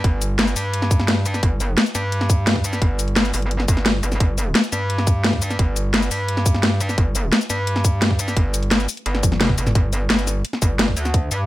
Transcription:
0.04 G1, kick, closed hi-hat
0.22 closed hi-hat, cabasa
0.39 snare, closed hi-hat
0.48 closed hi-hat, cabasa
0.56 G2, open hi-hat, cabasa
0.74 closed hi-hat
0.82 snare
0.91 kick, closed hi-hat, cabasa
1.00 snare
1.08 snare, closed hi-hat
1.26 closed hi-hat, cabasa
1.34 snare, cabasa
1.43 G1, kick, closed hi-hat
1.60 closed hi-hat, cabasa
1.78 snare, closed hi-hat
1.86 closed hi-hat, cabasa
1.95 G2, snare, closed hi-hat, cabasa
2.12 closed hi-hat
2.21 snare
2.30 kick, closed hi-hat, cabasa
2.47 snare, closed hi-hat
2.56 kick
2.64 closed hi-hat, cabasa
2.73 snare, cabasa
2.82 G1, kick, closed hi-hat
2.99 closed hi-hat, cabasa
3.08 closed hi-hat
3.16 snare, closed hi-hat
3.25 closed hi-hat, cabasa
3.34 G1, open hi-hat, cabasa
3.42 closed hi-hat
3.51 closed hi-hat
3.60 snare
3.68 G1, kick, closed hi-hat, cabasa
3.77 snare
3.86 snare, closed hi-hat
4.03 G1, closed hi-hat, cabasa
4.12 snare, cabasa
4.20 G1, kick, closed hi-hat
4.38 closed hi-hat, cabasa
4.55 snare, closed hi-hat
4.64 closed hi-hat, cabasa
4.72 G2, snare, closed hi-hat, cabasa
4.90 closed hi-hat
4.98 snare
5.07 kick, closed hi-hat, cabasa
5.24 snare, closed hi-hat
5.33 kick
5.42 closed hi-hat, cabasa
5.50 snare, cabasa
5.59 G1, kick, closed hi-hat
5.76 closed hi-hat, cabasa
5.94 snare, closed hi-hat
6.03 closed hi-hat, cabasa
6.11 G2, open hi-hat, cabasa
6.28 closed hi-hat
6.37 snare
6.46 kick, closed hi-hat, cabasa
6.54 snare
6.63 snare, closed hi-hat
6.80 closed hi-hat, cabasa
6.89 snare, cabasa
6.98 G1, kick, closed hi-hat
7.15 closed hi-hat, cabasa
7.32 snare, closed hi-hat
7.41 closed hi-hat, cabasa
7.50 G2, snare, closed hi-hat, cabasa
7.67 closed hi-hat
7.76 snare
7.84 kick, closed hi-hat, cabasa
8.02 snare, closed hi-hat
8.11 kick
8.19 closed hi-hat, cabasa
8.28 snare, cabasa
8.37 G1, kick, closed hi-hat
8.54 closed hi-hat, cabasa
8.63 closed hi-hat
8.71 snare, closed hi-hat
8.80 closed hi-hat, cabasa
8.89 open hi-hat, cabasa
8.97 closed hi-hat
9.06 G1, closed hi-hat
9.15 snare
9.23 kick, closed hi-hat, high tom, cabasa
9.32 snare, high tom
9.41 snare, closed hi-hat, mid tom
9.49 kick, mid tom
9.58 G1, closed hi-hat, cabasa
9.67 snare, mid tom, cabasa
9.75 G1, kick, closed hi-hat
9.93 closed hi-hat, cabasa
10.10 G1, snare, closed hi-hat
10.19 closed hi-hat, cabasa
10.27 snare, closed hi-hat, cabasa
10.45 closed hi-hat
10.53 snare
10.62 G1, kick, closed hi-hat, cabasa
10.79 snare, closed hi-hat
10.88 kick
10.97 D2, closed hi-hat, cabasa
11.05 snare, cabasa
11.14 kick, closed hi-hat
11.31 G2, closed hi-hat, cabasa

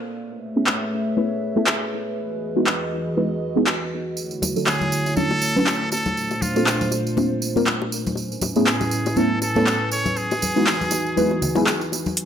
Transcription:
Already playing: A#3 A4 C5 D5 F5
0.17 A3 G#4 B4 C#5 E5
0.56 A3 B3 C#4 E4 G#4
0.67 clap
1.17 A3 B3 C#4 E4 B4
1.56 A3 B3 C#4 E4 A4
1.67 clap
2.17 E3 F#4 D#5
2.56 G#3 B3 D#4 E4 F#4
2.67 clap
3.17 G#3 B3 D#4 E4 B4
3.56 G#3 B3 D#4 E4 G#4
3.67 clap
4.17 D3 A3 E4 C#5, tambourine
4.31 tambourine
4.42 tambourine, high bongo, high conga
4.56 F#3 C#4 D4 E4 A4, tambourine
4.66 G#4, clap, tambourine, high bongo
4.81 tambourine, high conga
4.92 tambourine
5.06 tambourine, high bongo
5.17 F#3 C#4 D4 E4 A4 C#5, tambourine, high conga
5.31 high bongo
5.42 tambourine
5.56 F#3 C#4 D4 E4 B4, tambourine, high conga
5.67 clap, tambourine, high bongo
5.92 A#2 D4 F4 A4 C5, tambourine, high bongo
6.06 tambourine, high conga
6.17 tambourine
6.31 tambourine, high bongo
6.42 F4, tambourine, high conga
6.56 A#3 C4 D4 F4 A4, tambourine, high bongo
6.67 clap, tambourine
6.81 tambourine, high conga
6.91 tambourine, high bongo
7.07 tambourine
7.17 A#3 C4 D4 F4 C5, tambourine, high bongo, high conga
7.42 tambourine
7.56 A#3 C4 D4 F4 A#4, tambourine, high bongo, high conga
7.66 clap, tambourine
7.82 high bongo
7.92 tambourine
8.06 tambourine, high conga
8.15 A2 C#4 E4 B4 G#5, tambourine, high bongo
8.32 tambourine
8.41 tambourine, high bongo, high conga
8.56 A3 B3 C#4 E4 G#4, tambourine
8.67 G#4, clap, tambourine
8.81 tambourine, high bongo, high conga
8.91 tambourine
9.06 tambourine, high bongo
9.16 A3 B3 C#4 E4 A4 B4, tambourine, high conga
9.42 A4, tambourine, high bongo
9.56 A3 B3 C#4 E4 A4, tambourine, high conga
9.67 clap, tambourine, high bongo
9.92 C#5, tambourine
10.05 tambourine, high bongo, high conga
10.17 E3 D#4 F#4 G#4, tambourine
10.31 tambourine, high bongo
10.42 tambourine, high conga
10.56 G#3 B3 D#4 E4 F#4, tambourine
10.67 clap, tambourine, high bongo
10.81 tambourine, high conga
10.91 tambourine, high bongo
11.06 tambourine
11.17 G#3 B3 D#4 E4 B4, tambourine, high conga
11.31 high bongo
11.42 tambourine, low conga
11.55 G#3 B3 D#4 E4 G#4, tambourine, high bongo, high conga
11.67 clap, tambourine
11.81 tambourine
11.92 tambourine, high bongo
12.06 tambourine, high conga
12.17 D3 E4 F#4 A4 C#6, closed hi-hat

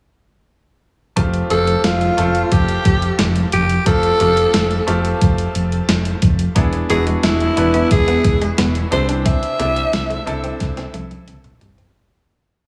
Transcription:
1.16 F1 A3 C4 F4 G4, kick, closed hi-hat
1.34 closed hi-hat
1.50 F1 A3 C4 F4 G4 A4, closed hi-hat
1.67 closed hi-hat
1.84 F1 F4, snare, closed hi-hat
2.01 closed hi-hat
2.17 F1 A3 C4 F4 A4, closed hi-hat
2.35 closed hi-hat
2.52 F1 G4, kick, closed hi-hat
2.69 closed hi-hat
2.85 F1, kick, closed hi-hat
3.02 closed hi-hat
3.19 F1, snare, closed hi-hat
3.36 closed hi-hat
3.52 F1 G4, closed hi-hat
3.70 closed hi-hat
3.86 F1 A3 C4 F4 A4, kick, closed hi-hat
4.03 closed hi-hat
4.20 F1 A3 C4 F4 G4, closed hi-hat
4.37 closed hi-hat
4.54 F1, snare, closed hi-hat
4.71 closed hi-hat
4.87 F1 A3 C4 F4 G4, closed hi-hat
5.05 closed hi-hat
5.21 F1, kick, closed hi-hat
5.38 closed hi-hat
5.55 F1, closed hi-hat
5.72 closed hi-hat
5.89 F1, snare, closed hi-hat
6.05 closed hi-hat
6.22 F1, kick, closed hi-hat
6.39 closed hi-hat
6.55 E1 B3 D4 E4 G#4, kick, closed hi-hat
6.73 muted clean electric guitar stroke, closed hi-hat
6.89 E1 B3 D4 E4 F#4 G#4, closed hi-hat
7.07 G#3, closed hi-hat
7.23 E1 G#3 E4, snare, closed hi-hat
7.40 closed hi-hat
7.57 E1 B3 D4 E4 B4, muted clean electric guitar stroke, closed hi-hat
7.74 B3, closed hi-hat
7.91 E1 G#4, kick, closed hi-hat
8.08 B3, closed hi-hat
8.24 E1, muted clean electric guitar stroke, kick, closed hi-hat
8.42 G#3, closed hi-hat
8.58 E1 B3, snare, closed hi-hat
8.75 closed hi-hat
8.91 C2 C4 D4 E4 G4 C5, muted clean electric guitar stroke, closed hi-hat
9.09 D4, closed hi-hat
9.26 C4 E5, kick, closed hi-hat
9.43 closed hi-hat
9.59 C2 A3 C4 D4 E4 G4, closed hi-hat
9.76 muted clean electric guitar stroke, closed hi-hat
9.93 C2, snare, closed hi-hat
10.10 A3, closed hi-hat
10.26 C2 C4 D4 E4 A4, muted clean electric guitar stroke, closed hi-hat
10.44 C4, closed hi-hat
10.60 C2, muted clean electric guitar stroke, kick, snare, closed hi-hat
10.77 C4, snare, closed hi-hat
10.94 C2 A3, closed hi-hat, high tom
11.11 closed hi-hat, high tom
11.28 C2, muted clean electric guitar stroke, closed hi-hat, mid tom
11.44 closed hi-hat, mid tom
11.61 C2 G3, closed hi-hat, floor tom
11.78 C4, closed hi-hat, floor tom

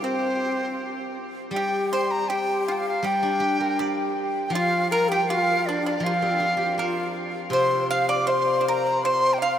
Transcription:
Already playing: G3
0.02 C4 C5
1.51 G3 G4 G5
1.56 G4
1.92 C5 C6
2.11 A#5
2.29 G4 G5
2.67 F4 F5
2.72 G5
2.78 F5
2.88 F5
3.03 G3 G4 G5
3.23 D4
3.40 G4
3.60 A#4
3.79 G4 D5
4.46 F3 G5
4.52 F4 F5
4.91 A#4 A#5
5.09 G4 G5
5.21 G5
5.26 F4 F5
5.66 D4 D5
5.81 D4
5.86 D4 D5
5.98 F3 F4
6.04 F4 G4 F5
6.14 F4
6.22 C4 G4
6.31 F4
6.40 F4 G4
6.50 F4
6.57 G4
6.64 F4
6.72 G4
6.78 A#4 C5
6.82 F4
7.50 C3 C5 C6
7.88 F5
8.09 D5 D6
8.27 C5 C6
8.61 C5
8.68 A#4 A#5
9.02 C5 C6
9.33 G5
9.38 F5

